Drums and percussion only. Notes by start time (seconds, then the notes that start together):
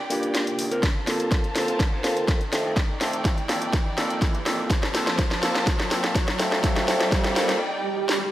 0.10 open hi-hat
0.23 closed hi-hat
0.35 snare, closed hi-hat
0.47 closed hi-hat
0.59 open hi-hat
0.71 closed hi-hat
0.83 kick, snare, closed hi-hat
1.07 snare, open hi-hat
1.20 closed hi-hat
1.31 kick, snare, closed hi-hat
1.44 closed hi-hat
1.56 snare, open hi-hat
1.68 closed hi-hat
1.80 kick, snare, closed hi-hat
2.04 snare, open hi-hat
2.17 closed hi-hat
2.28 kick, snare, closed hi-hat
2.41 closed hi-hat
2.53 snare, open hi-hat
2.77 kick, snare, closed hi-hat
3.01 snare, open hi-hat
3.13 closed hi-hat
3.25 kick, snare, closed hi-hat
3.38 closed hi-hat
3.49 snare, open hi-hat
3.62 closed hi-hat
3.73 kick, snare, closed hi-hat
3.98 snare, open hi-hat
4.10 closed hi-hat
4.22 kick, snare, closed hi-hat
4.35 closed hi-hat
4.46 snare, open hi-hat
4.70 kick, snare, closed hi-hat
4.83 snare
4.95 snare, open hi-hat
5.07 snare, closed hi-hat
5.18 kick, snare, closed hi-hat
5.31 snare, closed hi-hat
5.43 snare, open hi-hat
5.55 snare, closed hi-hat
5.67 kick, snare, closed hi-hat
5.80 snare
5.91 snare, open hi-hat
6.04 snare, closed hi-hat
6.15 kick, snare, closed hi-hat
6.28 snare, closed hi-hat
6.39 snare, open hi-hat
6.52 snare
6.64 kick, snare, closed hi-hat
6.76 snare, closed hi-hat
6.88 snare, open hi-hat
7.01 snare, closed hi-hat
7.12 kick, snare, closed hi-hat
7.24 snare, closed hi-hat
7.36 snare, open hi-hat
7.49 snare, closed hi-hat
8.09 snare